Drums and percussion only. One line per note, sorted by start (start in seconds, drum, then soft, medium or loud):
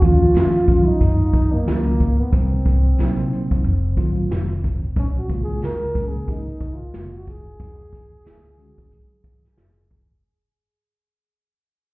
0.02 kick medium
0.02 closed hi-hat medium
0.35 snare loud
0.35 closed hi-hat loud
0.68 kick medium
0.68 closed hi-hat medium
1.01 kick medium
1.01 closed hi-hat medium
1.33 kick medium
1.33 closed hi-hat medium
1.68 snare loud
1.68 closed hi-hat medium
2.00 kick medium
2.00 closed hi-hat medium
2.33 kick loud
2.33 closed hi-hat loud
2.66 kick medium
2.66 closed hi-hat medium
2.98 snare medium
2.98 closed hi-hat medium
3.32 closed hi-hat medium
3.51 kick medium
3.51 closed hi-hat soft
3.65 closed hi-hat medium
3.97 kick medium
3.97 closed hi-hat medium
4.31 snare loud
4.31 closed hi-hat medium
4.64 kick medium
4.64 closed hi-hat medium
4.96 kick loud
4.96 closed hi-hat loud
5.29 kick medium
5.29 closed hi-hat medium
5.62 snare medium
5.62 closed hi-hat medium
5.95 kick medium
5.95 closed hi-hat medium
6.15 closed hi-hat soft
6.28 kick medium
6.28 closed hi-hat medium
6.47 closed hi-hat soft
6.60 kick medium
6.60 closed hi-hat medium
6.94 snare loud
6.94 closed hi-hat medium
7.27 kick medium
7.27 closed hi-hat medium
7.60 kick loud
7.60 closed hi-hat loud
7.93 kick medium
7.93 closed hi-hat medium
8.25 snare loud
8.25 closed hi-hat medium
8.45 closed hi-hat soft
8.59 closed hi-hat medium
8.78 kick medium
8.92 closed hi-hat medium
9.24 kick medium
9.24 closed hi-hat medium
9.45 snare soft
9.57 snare medium
9.57 closed hi-hat medium
9.91 kick medium